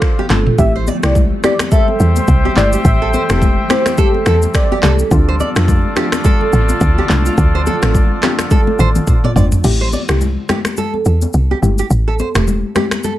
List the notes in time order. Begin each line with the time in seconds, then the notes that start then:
Already playing: D3 F3 A3 C4 F4 C5 D5 F5
0.02 finger snap, kick, cross-stick
0.19 G4, high conga
0.30 G1 A3 C4 D4 F4 A4, finger snap, cross-stick, clap, high conga, low conga
0.47 mid tom
0.58 A1 E3 G3 A3 C4 E4 G4 E5, kick, shaker
0.76 C5
0.87 D5, high conga, shaker
1.03 C2 A3 C4 E4 G4 D5, finger snap, cross-stick, shaker
1.15 kick, low conga, shaker
1.44 A3 C4 E4 G4 D5, finger snap, cross-stick, high conga, shaker
1.59 finger snap, cross-stick, high conga, shaker
1.71 A4 C5 E5 G5, kick, low conga, shaker
1.88 high conga
2.00 E2, shaker
2.16 C5, high conga, shaker
2.28 C2, kick, shaker
2.45 G4, high conga
2.57 G1 A3 C4 E4 G4 D5, clap, high conga, low conga, shaker
2.73 G4, shaker
2.85 A1 E5, kick, shaker
3.02 A4
3.13 C5, high conga, shaker
3.30 E1 A3 C4 E4 G4 A4, finger snap, cross-stick, shaker
3.42 kick, low conga, shaker
3.70 A3 C4 E4 G4 C5, finger snap, cross-stick, high conga, shaker
3.86 finger snap, cross-stick, high conga, shaker
3.98 G4 A4, kick, low conga, shaker
4.14 high conga
4.26 E2 A4, finger snap, cross-stick, shaker
4.42 high conga, shaker
4.54 D5, finger snap, kick, cross-stick, shaker
4.72 G4, high conga
4.83 C2 A3 C4 E4 G4 A4, finger snap, cross-stick, clap, high conga, low conga, shaker
4.99 shaker
5.11 D2 D3 F3 A3 C4 D4 F4 A4 D5, kick, shaker
5.28 C5
5.40 D5, high conga, shaker
5.56 F2 A3 C4 D4 F4, finger snap, cross-stick, shaker
5.68 kick, low conga, shaker
5.96 A3 C4 D4 F4 G4, finger snap, cross-stick, high conga, shaker
6.12 finger snap, cross-stick, high conga, shaker
6.24 A4, kick, low conga, shaker
6.41 high conga
6.53 A1, shaker
6.69 high conga, shaker
6.81 D2, kick, shaker
6.98 G4, high conga
7.09 C2 A3 C4 D4 F4, clap, high conga, low conga, shaker
7.26 F4, shaker
7.38 D2, kick, shaker
7.55 C5
7.66 A4, high conga, shaker
7.82 A1 A3 C4 D4 F4, finger snap, cross-stick, shaker
7.95 kick, low conga, shaker
8.23 A3 C4 D4 F4 G4, finger snap, cross-stick, clap, high conga, shaker
8.39 finger snap, cross-stick, high conga, shaker
8.51 A4, kick, high tom, low conga, shaker
8.67 high tom, high conga
8.79 A1 C5, mid tom, shaker
8.95 mid tom, high conga, shaker
9.07 kick, mid tom, shaker
9.24 D5, mid tom, high conga
9.36 G1 A3 C4 D4 F4 D5, floor tom, high conga, low conga, shaker
9.52 floor tom, shaker
9.64 A1 A3 C4 E4 G4, crash, shaker
9.81 C5
9.92 D5, high conga, shaker
10.09 C2 A3 C4 E4 G4, finger snap, cross-stick, shaker
10.21 low conga, shaker
10.49 A3 C4 E4 G4, finger snap, cross-stick, high conga, low conga, shaker
10.65 finger snap, cross-stick, high conga, shaker
10.77 A4, low conga, shaker
10.94 high conga
11.05 E2, shaker
11.22 high conga, shaker
11.33 C2, shaker
11.51 G4, high conga
11.62 G1 A3 C4 E4 G4, high conga, low conga, shaker
11.78 G4, shaker
11.90 A1, shaker
12.08 A4
12.19 C5, high conga, shaker
12.35 E1 A3 C4 E4 G4, finger snap, cross-stick, shaker
12.47 low conga, shaker
12.75 A3 C4 E4 G4, finger snap, cross-stick, high conga, low conga, shaker
12.91 finger snap, cross-stick, high conga, shaker
13.03 A4, low conga, shaker